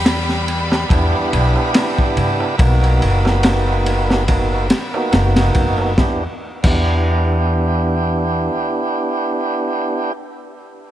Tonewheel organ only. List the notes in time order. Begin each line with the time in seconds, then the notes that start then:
0.91 B3 D4 E4 G4
2.58 A#3 B3 D#4 F#4
4.28 A#3 B3 D#4 F#4
4.94 A#3 B3 D#4 F#4
5.97 B3 D4 E4 G4
6.63 B3 D4 E4 G4